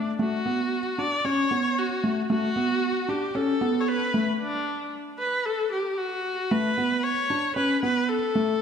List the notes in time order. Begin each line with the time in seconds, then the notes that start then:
0.19 A3 F#4
0.46 B3
0.98 D4 D5
1.25 C#4 C#5
1.51 B3
1.78 F#4
2.04 A3
2.30 A3 F#4
2.56 B3
3.09 D4 G4
3.35 C#4 A4
3.61 B3
3.81 C#5
3.88 B4
4.14 A3
4.40 D4
5.19 B4
5.46 A4
5.72 G4
5.98 F#4
6.51 A3 B4
6.78 B3
7.04 C#5
7.30 D4
7.56 C#4 B4
7.83 B3 B4
8.09 A4
8.35 A3